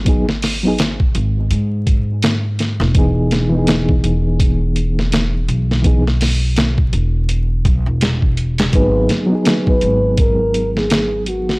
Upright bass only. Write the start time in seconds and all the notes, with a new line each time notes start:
Already playing: G#1
1.15 G#1
1.51 G#2
2.80 E1
4.04 E1
5.48 B1
6.93 E1
7.65 B1
7.86 E1
8.74 G#1
9.82 G#1